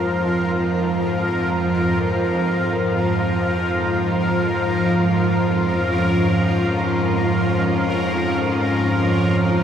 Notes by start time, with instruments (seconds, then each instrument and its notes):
Already playing: synth drone F2 F3, cello section G#2 F3 C4 F4, synth texture A#4
5.69 cello section C#4